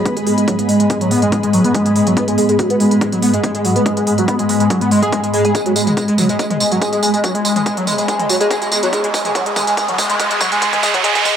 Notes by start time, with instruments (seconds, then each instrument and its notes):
Already playing: synth drone G#2 G#3, ambient pad B3 G#4 D#5 B5
0.05 analog synth lead B3, kick, closed hi-hat
0.17 analog synth lead G#3, closed hi-hat
0.27 analog synth lead G#3, open hi-hat
0.38 analog synth lead G#3, closed hi-hat
0.48 analog synth lead F#3, kick, closed hi-hat
0.59 analog synth lead B3, closed hi-hat
0.69 analog synth lead G#3, open hi-hat
0.80 analog synth lead G#3, closed hi-hat
0.90 analog synth lead G#3, kick, closed hi-hat
1.01 analog synth lead F#3, closed hi-hat
1.11 analog synth lead B3, open hi-hat
1.22 analog synth lead G#3, closed hi-hat
1.32 analog synth lead G#3, kick, closed hi-hat
1.43 analog synth lead G#3, closed hi-hat
1.53 analog synth lead F#3, open hi-hat
1.64 analog synth lead B3, closed hi-hat
1.74 analog synth lead G#3, kick, closed hi-hat
1.86 analog synth lead G#3, closed hi-hat
1.96 analog synth lead G#3, open hi-hat
2.07 analog synth lead F#3, closed hi-hat
2.17 analog synth lead B3, kick, closed hi-hat
2.28 analog synth lead G#3, closed hi-hat
2.38 analog synth lead G#3, open hi-hat
2.49 analog synth lead G#3, closed hi-hat
2.59 analog synth lead F#3, kick, closed hi-hat
2.70 analog synth lead B3, closed hi-hat
2.80 analog synth lead G#3, open hi-hat
2.91 analog synth lead G#3, closed hi-hat
3.01 analog synth lead G#3, kick, closed hi-hat
3.12 analog synth lead F#3, closed hi-hat
3.22 analog synth lead B3, open hi-hat
3.34 analog synth lead G#3, closed hi-hat
3.44 analog synth lead G#3, kick, closed hi-hat
3.55 analog synth lead G#3, closed hi-hat
3.65 analog synth lead F#3, open hi-hat
3.76 analog synth lead B3, closed hi-hat
3.86 analog synth lead G#3, kick, closed hi-hat
3.97 analog synth lead G#3, closed hi-hat
4.07 analog synth lead G#3, open hi-hat
4.18 analog synth lead F#3, closed hi-hat
4.28 analog synth lead B3, kick, closed hi-hat
4.39 analog synth lead G#3, closed hi-hat
4.49 analog synth lead G#3, open hi-hat
4.60 analog synth lead G#3, closed hi-hat
4.70 analog synth lead F#3, kick, closed hi-hat
4.81 analog synth lead B3, closed hi-hat
4.91 analog synth lead G#3, open hi-hat
5.02 analog synth lead G#4, closed hi-hat
5.12 analog synth lead G#3, kick, closed hi-hat
5.24 analog synth lead G#3, closed hi-hat
5.34 analog synth lead G#3, open hi-hat
5.45 analog synth lead G#4, closed hi-hat
5.55 analog synth lead G#3, kick, closed hi-hat, tambourine, riser
5.66 analog synth lead F#3, closed hi-hat
5.76 analog synth lead G#3, open hi-hat, tambourine
5.87 analog synth lead G#3, closed hi-hat, mid tom, tambourine
5.97 analog synth lead G#3, kick, closed hi-hat, tambourine
6.08 analog synth lead G#3, closed hi-hat
6.18 analog synth lead F#3, mid tom, open hi-hat, tambourine
6.29 analog synth lead G#3, closed hi-hat, tambourine
6.39 analog synth lead G#3, kick, closed hi-hat, tambourine
6.50 analog synth lead G#3, closed hi-hat, mid tom
6.60 analog synth lead G#3, open hi-hat, tambourine
6.72 analog synth lead F#3, closed hi-hat, tambourine
6.82 analog synth lead G#3, kick, closed hi-hat, tambourine
6.93 analog synth lead G#3, closed hi-hat, tambourine
7.03 analog synth lead G#3, open hi-hat, tambourine
7.14 analog synth lead G#3, closed hi-hat, tambourine
7.24 analog synth lead F#3, kick, closed hi-hat, tambourine
7.35 analog synth lead G#3, closed hi-hat
7.45 analog synth lead G#3, open hi-hat, tambourine
7.56 analog synth lead G#3, closed hi-hat, mid tom, tambourine
7.66 analog synth lead G#3, kick, closed hi-hat, tambourine
7.77 analog synth lead F#3, closed hi-hat
7.87 analog synth lead G#3, mid tom, open hi-hat, tambourine
7.98 analog synth lead G#3, closed hi-hat, tambourine
8.08 analog synth lead G#3, kick, closed hi-hat, tambourine
8.19 analog synth lead G#3, closed hi-hat, mid tom
8.29 analog synth lead F#3, open hi-hat, tambourine
8.41 analog synth lead G#3, closed hi-hat, tambourine
8.51 analog synth lead G#3, kick, closed hi-hat, tambourine
8.62 analog synth lead G#3, closed hi-hat, tambourine
8.72 analog synth lead G#3, open hi-hat, tambourine
8.83 analog synth lead F#3, closed hi-hat, tambourine
8.93 analog synth lead G#3, kick, closed hi-hat, tambourine
9.04 analog synth lead G#3, closed hi-hat
9.14 analog synth lead G#3, kick, open hi-hat, tambourine
9.25 analog synth lead G#3, closed hi-hat, mid tom, tambourine
9.35 analog synth lead F#3, kick, closed hi-hat, tambourine
9.46 analog synth lead G#3, closed hi-hat
9.56 analog synth lead G#3, kick, mid tom, open hi-hat, tambourine
9.67 analog synth lead G#3, closed hi-hat, tambourine
9.77 analog synth lead G#3, kick, closed hi-hat, tambourine
9.88 analog synth lead F#3, closed hi-hat, mid tom
9.98 analog synth lead G#3, kick, open hi-hat, tambourine
10.10 analog synth lead G#3, closed hi-hat, tambourine
10.20 analog synth lead G#3, kick, closed hi-hat, tambourine
10.31 analog synth lead G#3, closed hi-hat, tambourine
10.41 analog synth lead F#3, kick, open hi-hat, tambourine
10.52 analog synth lead G#3, closed hi-hat, tambourine
10.62 analog synth lead G#3, kick, closed hi-hat, tambourine
10.73 analog synth lead G#3, kick, closed hi-hat, mid tom
10.83 analog synth lead G#3, kick, open hi-hat, tambourine
10.94 analog synth lead F#3, kick, closed hi-hat, mid tom, tambourine
11.04 analog synth lead G#3, kick, closed hi-hat, tambourine
11.15 analog synth lead G#3, kick, closed hi-hat, tambourine
11.25 analog synth lead G#3, kick, mid tom, open hi-hat, tambourine